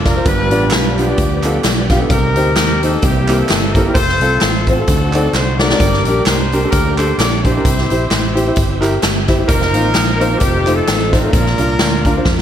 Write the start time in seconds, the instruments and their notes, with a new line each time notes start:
Already playing: fingered electric bass F1, horn section A#3 D4 F4, tonewheel organ A#3 D4 F4
0.05 grand piano F4 A#4 D5, horn section A#4, kick, snare, closed hi-hat, tambourine
0.16 grand piano F4 A#4 C5
0.25 fingered electric bass G1, grand piano G2, tonewheel organ F3 G3 B3 D4 G4, horn section D4 F4 B4, kick, closed hi-hat, tambourine
0.51 fingered electric bass A1, grand piano B3 D4 F4 G4 D5, closed hi-hat, tambourine
0.70 fingered electric bass B1, horn section B4, snare, clap, closed hi-hat, tambourine
0.98 grand piano B3 D4 F4 G4 F5, horn section B3 D4 G4, closed hi-hat, tambourine
1.08 grand piano B3 D4 F4 G4 D5
1.18 fingered electric bass D2, kick, closed hi-hat, tambourine
1.43 grand piano B3 D4 F4 G4 A4, clap, closed hi-hat, tambourine
1.64 fingered electric bass B1, snare, clap, closed hi-hat, tambourine
1.89 grand piano B3 D4 F4 G4 F5, kick, snare, closed hi-hat, tambourine
2.00 grand piano B3 D4 F4 G4 A4
2.08 fingered electric bass C2, grand piano C3, tonewheel organ C4 D4 G4, horn section D#4 G4 A#4, kick, closed hi-hat, tambourine
2.14 tonewheel organ D#4
2.36 fingered electric bass D2, grand piano D#4 G4 C5, closed hi-hat, tambourine
2.56 fingered electric bass D#2, snare, clap, closed hi-hat, tambourine
2.83 grand piano D#4 G4 C5, horn section A4, closed hi-hat, tambourine
2.92 grand piano D#4 G4 D#5
3.01 fingered electric bass C2, grand piano C3, tonewheel organ D3 G3 A#3 C4 G4, horn section E4 G4, kick, closed hi-hat, tambourine
3.05 tonewheel organ E3, horn section A#3
3.28 grand piano A#3 C4 E4 G4 C5, clap, closed hi-hat, tambourine
3.37 horn section E4 A4
3.49 fingered electric bass G1, snare, clap, closed hi-hat, tambourine
3.73 grand piano A#3 C4 E4 G4 A4, horn section A#4, kick, closed hi-hat, tambourine
3.87 grand piano A#3 C4 E4 G4 A#4
3.94 fingered electric bass F1, tonewheel organ A3 C4 F4, horn section F4 A4 C5, kick, closed hi-hat, tambourine
4.09 snare
4.20 fingered electric bass C2, grand piano C4 F4 A4, closed hi-hat, tambourine
4.40 fingered electric bass A1, horn section C5, snare, clap, closed hi-hat, tambourine
4.67 horn section C4 F#4 A4, grand piano C4 F4 C5, kick, closed hi-hat, tambourine
4.80 grand piano C4 F4 A4
4.87 fingered electric bass D2, grand piano D3, tonewheel organ A3 C4 D4 D#4 F#4, kick, closed hi-hat, tambourine
5.13 grand piano C4 D#4 F#4 A4 D5, clap, closed hi-hat, tambourine
5.33 fingered electric bass C2, horn section C5, snare, clap, tambourine
5.59 grand piano C4 D#4 F#4 A4 D5, horn section G4 A#4 D5, snare, tambourine
5.70 grand piano C4 D#4 F#4 A4 D5, snare
5.80 fingered electric bass G1, grand piano G2, tonewheel organ A#3 D4 G4, kick, closed hi-hat, tambourine
5.93 snare
6.05 fingered electric bass A#1, grand piano D4 A#4, horn section D5, closed hi-hat, tambourine
6.09 grand piano G4
6.26 fingered electric bass C2, horn section G4 C5, snare, clap, closed hi-hat, tambourine
6.52 grand piano D4 G4 A#4, closed hi-hat, tambourine
6.64 grand piano D4 G4 A4
6.70 fingered electric bass D2, horn section D4 G4 A#4, kick, closed hi-hat, tambourine
6.96 grand piano D4 G4 A4, horn section C5, clap, closed hi-hat, tambourine
7.17 fingered electric bass A#1, horn section D5, snare, clap, closed hi-hat, tambourine
7.42 grand piano D4 G4 C5, horn section E4 G4 C5, kick, closed hi-hat, tambourine
7.57 grand piano D4 G4 A#4
7.64 fingered electric bass C2, grand piano C3, tonewheel organ C4 E4 G4, kick, closed hi-hat, tambourine
7.78 snare
7.90 fingered electric bass A#1, grand piano E4 G4 C5, closed hi-hat, tambourine
8.11 fingered electric bass A1, snare, clap, closed hi-hat, tambourine
8.35 grand piano E4 G4 C5, closed hi-hat, tambourine
8.47 grand piano E4 G4 C5
8.56 fingered electric bass G1, kick, closed hi-hat, tambourine
8.81 grand piano E4 G4 A#4, clap, closed hi-hat, tambourine
9.02 fingered electric bass G1, snare, clap, closed hi-hat, tambourine
9.27 grand piano E4 G4 C5, kick, snare, closed hi-hat, tambourine
9.38 grand piano E4 G4 C5
9.48 fingered electric bass F1, tonewheel organ D#3 F3 A#3 C4 F4, horn section D#4 A#4, kick, closed hi-hat, tambourine
9.62 snare
9.74 fingered electric bass A1, grand piano A#3 C4 D#4 F4 C5, closed hi-hat, tambourine
9.94 fingered electric bass A#1, snare, clap, closed hi-hat, tambourine
10.20 grand piano A#3 C4 D#4 F4 C5, closed hi-hat, tambourine
10.30 grand piano A#3 C4 D#4 F4 C5
10.38 fingered electric bass F1, tonewheel organ D#3 F3 A3 C4 F4, horn section C4 D#4 G4, kick, closed hi-hat, tambourine
10.67 grand piano A3 C4 D#4 F4 C5, clap, closed hi-hat, tambourine
10.75 horn section C4 D#4 A4
10.87 fingered electric bass A1, snare, clap, closed hi-hat, tambourine
11.11 grand piano A3 C4 D#4 F4 C5, horn section D4 F4 A#4, kick, snare, closed hi-hat, tambourine
11.23 grand piano A3 C4 D#4 F4 C5
11.33 fingered electric bass A#1, grand piano A#2, tonewheel organ A#3 D4 F4, kick, closed hi-hat, tambourine
11.46 snare
11.58 fingered electric bass C2, grand piano D4 F4 A#4, closed hi-hat, tambourine
11.79 fingered electric bass D2, snare, clap, closed hi-hat, tambourine
12.05 grand piano D4 F4 A#4, kick, closed hi-hat, tambourine
12.17 grand piano D4 F4 C5
12.25 fingered electric bass F2, kick, snare, tambourine
12.39 snare